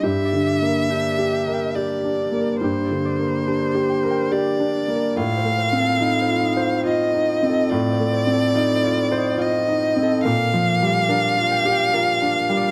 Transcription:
X:1
M:3/4
L:1/16
Q:1/4=71
K:Gm
V:1 name="Violin"
=e8 d4 | c8 d4 | f8 e4 | d8 e4 |
f12 |]
V:2 name="Harp"
G d d B G d g g G3 B | G d d B G d g g G3 B | F c c A F c E f F3 A | F c c A F c2 e F3 A |
B3 d B2 g g B3 d |]
V:3 name="Grand piano"
(3G,,2 D,2 B,2 (3D2 G2 B2 (3G2 D2 B,2 | (3G,,2 D,2 B,2 (3D2 G2 B2 (3G2 D2 B,2 | (3A,,2 A,2 C2 (3E2 F2 c2 (3F2 E2 C2 | (3A,,2 A,2 C2 (3E2 F2 c2 (3F2 E2 C2 |
(3B,,2 F,2 G,2 (3D2 F2 G2 (3F2 D2 G,2 |]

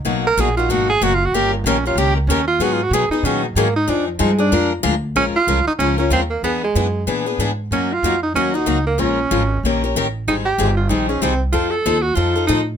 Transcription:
X:1
M:4/4
L:1/8
Q:"Swing" 1/4=188
K:Ebm
V:1 name="Tenor saxophone"
z ^A _A F ^F A (3F =F ^F | =G B, D F G B, D F | (3G F G A E D G, B, E | =D F, A, D2 z3 |
[K:Bbm] D F2 E D D C B, | =B, ^G,3 z4 | D F2 E D E2 B, | D4 z4 |
E =G2 F E D C z | F =A2 G F2 E z |]
V:2 name="Steel-string acoustic guitar"
[=B,,^F,^A,^D^F] z [B,,F,A,DF] [A,DF] [B,,F,A,DF] z [B,,F,A,DF] z | [E,B,D=GB] z [E,B,DGB] [DGB] [E,B,DGB] z [E,B,DGB] z | [E,G,CEA] z [E,G,CEA] [CEA] [E,G,CEA] z [E,G,CEA] z | [F,=CEA] z [F,CEA] [CEA] [F,A,=DFB] z [F,A,DFB] z |
[K:Bbm] [F,A,DFB] z [F,A,DFB] z [F,A,DFB] [DFB] [F,A,DFB] z | [=E,=B,=D^G] z [E,B,DG] z [E,B,DG] [B,DG] [E,B,DG] z | [G,B,EG] z [G,B,EG] z [G,B,EG] [B,EG] [G,B,EG] z | [F,A,DFB] z [F,A,DFB] z [E,B,D=GB] [DGB] [E,B,DGB] z |
[E,=G,CEA] z [E,G,CEA] z [E,G,CEA] [CEA] [E,G,CEA] z | [F,CE=A] z [F,CEA] z [F,CEA] [CEA] [F,CEA] z |]
V:3 name="Upright bass" clef=bass
=B,,,2 ^A,,,2 _A,,,2 ^F,,,2 | =G,,,2 B,,,2 D,,2 E,,2 | A,,2 C, z B,,2 A,,2 | F,,2 =G,,2 F,,2 =D,,2 |
[K:Bbm] B,,, z C,, z D,,2 E,,2 | =E,,2 ^F,,2 B,,2 ^G,,2 | G,,2 F,,2 E,,2 D,,2 | B,,,2 A,,,2 B,,,2 =A,,,2 |
A,,,2 =G,,,2 B,,,2 C,,2 | F,,2 E,,2 F,,2 =A,,2 |]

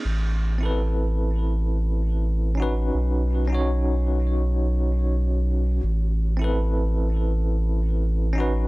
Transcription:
X:1
M:4/4
L:1/16
Q:"Swing 16ths" 1/4=83
K:Am
V:1 name="Tine electric piano"
z3 [CEAB]8- [CEAB]3 [^C^D^FB]2- | [^C^D^FB]3 [CDF^c]12- [CDFc] | z3 [CEAB]8- [CEAB]3 [^C^D^FB]2 |]
V:2 name="Analog synth bass" clef=bass
A,,,16 | B,,,16 | A,,,16 |]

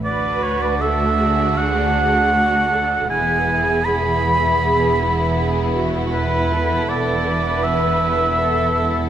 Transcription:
X:1
M:4/4
L:1/16
Q:1/4=79
K:Dlyd
V:1 name="Oboe"
d2 c d e4 f8 | g4 b8- b2 z2 | B4 d4 e8 |]
V:2 name="Viola section"
B4 A2 G6 F2 A2 | G8 G2 E2 G2 F2 | E2 A2 A2 B6 A2 A2 |]
V:3 name="Violin section"
F16 | G16 | A16 |]
V:4 name="Violin section"
[DF]16 | [B,E]16- | [B,E]16 |]
V:5 name="Cello section" clef=bass
D,,16 | E,,16- | E,,16 |]
V:6 name="Double bass section" clef=bass
D,,16 | E,,,16- | E,,,16 |]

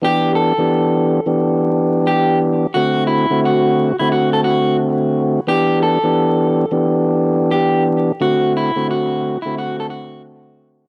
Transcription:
X:1
M:4/4
L:1/16
Q:"Swing 16ths" 1/4=88
K:Em
V:1 name="Clean electric guitar"
G2 A8- A2 G2 z2 | F2 E2 F3 E F A F2 z4 | G2 A8- A2 G2 z2 | F2 E2 F3 E F A F2 z4 |]
V:2 name="Tonewheel organ"
[E,B,DG]3 [E,B,DG]4 [E,B,DG]8 z | [D,A,CF]3 [D,A,CF]4 [D,A,CF]8 z | [E,B,DG]3 [E,B,DG]4 [E,B,DG]8 z | [D,A,CF]3 [D,A,CF]4 [D,A,CF]8 z |]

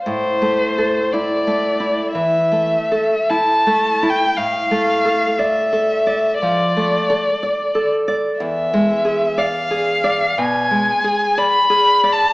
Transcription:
X:1
M:4/4
L:1/16
Q:1/4=59
K:Am
V:1 name="Violin"
c4 d4 e4 a3 g | f4 e4 d6 z2 | e4 f4 ^g4 b3 a |]
V:2 name="Nylon-string guitar"
(3A,,2 A,2 A2 (3E2 A,2 E2 (3E,2 A,2 A2 (3E2 A,2 E2 | (3A,,2 A,2 A2 (3d2 A2 d2 (3F,2 A,2 A2 (3d2 A2 d2 | (3E,,2 ^G,2 ^G2 (3d2 G2 d2 (3B,,2 G,2 G2 (3d2 G2 d2 |]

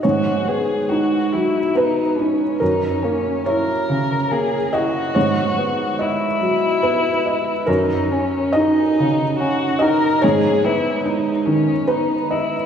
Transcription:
X:1
M:3/4
L:1/8
Q:1/4=71
K:G#m
V:1 name="Violin"
F G F E D C | D C A2 G F- | F2 E4 | D C D2 F A |
G E D C D E |]
V:2 name="Felt piano"
c4 B2 | A2 c3 d | c4 B2 | A2 d3 d |
c4 B2 |]
V:3 name="Felt piano"
G,, B, D F, B, D | F,, A, E C, A, E | G,, B, d F, B, d | F,, C D C, C D |
G,, B, D D, B, d |]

